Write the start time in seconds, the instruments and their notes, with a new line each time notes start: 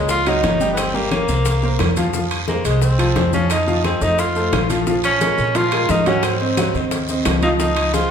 Already playing: upright bass C#2, grand piano A#3 A#4 C#5
0.09 tenor saxophone F4, high bongo, high conga, long guiro, maracas
0.26 grand piano F#3 F#4 F#5, tenor saxophone D#4, high conga, high timbale, claves, maracas
0.43 upright bass G1, grand piano A#3 A#4 C#5, high bongo, low bongo, high conga, high timbale, short guiro, maracas
0.60 grand piano G3 G4 G5, high conga, short guiro, maracas
0.73 tenor saxophone B3, high bongo, long guiro, maracas
0.77 tenor saxophone C4, high conga, high timbale, claves
0.94 grand piano G3 G4 G5, tenor saxophone A#3, high bongo, high conga, maracas
1.11 grand piano A#3 A#4 C#5, high bongo, high conga, high timbale, short guiro, claves, maracas
1.28 upright bass C2, grand piano A#3 A#4 C5, high bongo, high conga, short guiro, maracas
1.45 high bongo, high conga, high timbale, long guiro, maracas
1.63 grand piano A#3 A#4 C5, high bongo, high conga, maracas
1.79 upright bass F2, high bongo, low bongo, high conga, high timbale, low timbale, short guiro, claves, maracas
1.97 grand piano F3 F4 F5, high conga, high timbale, short guiro, maracas
2.14 grand piano F3 F4 F5, high bongo, high conga, long guiro, maracas
2.31 high conga, high timbale, claves, maracas
2.48 grand piano G#3 G#4 C5, tenor saxophone A#3, high bongo, high conga, short guiro, maracas
2.65 upright bass C2, grand piano G#3 G#4 C5, tenor saxophone G#3, high conga, high timbale, short guiro, maracas
2.82 tenor saxophone C4, high bongo, high conga, long guiro, maracas
2.99 grand piano F3 F4 F5, high conga, high timbale, claves, maracas
3.16 upright bass F2, grand piano G#3 G#4 C5, high bongo, low bongo, high conga, high timbale, short guiro, maracas
3.33 grand piano F3 F4 F5, tenor saxophone C#4, high conga, short guiro, maracas
3.50 tenor saxophone D#4, high bongo, high conga, high timbale, long guiro, claves, maracas
3.67 grand piano F3 F4 F5, high bongo, high conga, maracas
3.84 grand piano G#3 G#4 C5, tenor saxophone C4, high bongo, high conga, high timbale, short guiro, claves, maracas
4.01 upright bass F2, grand piano A3 A4 C5, tenor saxophone D#4, high bongo, high conga, short guiro, maracas
4.18 tenor saxophone F4, high bongo, high conga, high timbale, long guiro, maracas
4.36 grand piano A3 A4 C5, high bongo, high conga, maracas
4.52 upright bass A#1, high bongo, low bongo, high conga, high timbale, low timbale, short guiro, claves, maracas
4.70 grand piano F3 F4 F5, high conga, high timbale, short guiro, maracas
4.87 grand piano F3 F4 F5, high bongo, high conga, long guiro, maracas
5.04 tenor saxophone C#4, high bongo, high conga, high timbale, claves, maracas
5.21 grand piano G#3 G#4 A#4, high bongo, high conga, high timbale, short guiro, maracas
5.38 upright bass A#2, high bongo, high conga, short guiro, maracas
5.55 grand piano F3 F4 F5, tenor saxophone F4, high bongo, high conga, high timbale, long guiro, maracas
5.72 grand piano G#3 G#4 A#4, high conga, high timbale, claves
5.89 upright bass G#2, tenor saxophone D#4, high bongo, low bongo, high conga, short guiro, maracas
6.06 grand piano F#3 F#4 F#5, tenor saxophone C#4, high bongo, high timbale, short guiro, maracas
6.23 tenor saxophone C4, high bongo, high conga, high timbale, long guiro, claves, maracas
6.40 grand piano C4 C5 D#5, high bongo, high conga
6.57 grand piano F#3 F#4 F#5, high bongo, high conga, high timbale, short guiro, claves, maracas
6.74 upright bass D#2, grand piano C4 C5 D#5, high bongo, high conga, short guiro, maracas
6.91 high bongo, high conga, high timbale, long guiro, maracas
7.08 grand piano C4 C5 D#5, high bongo, high conga, maracas
7.25 upright bass C#2, high bongo, low bongo, high conga, high timbale, low timbale, short guiro, claves, maracas
7.42 grand piano F3 F4 F5, tenor saxophone D#4, high timbale, short guiro, maracas
7.59 grand piano F3 F4 F5, tenor saxophone D#4, high bongo, high conga, long guiro, maracas
7.76 high bongo, high conga, high timbale, claves
7.93 grand piano G#3 G#4 C5, tenor saxophone F4, high bongo, high conga, high timbale, short guiro, maracas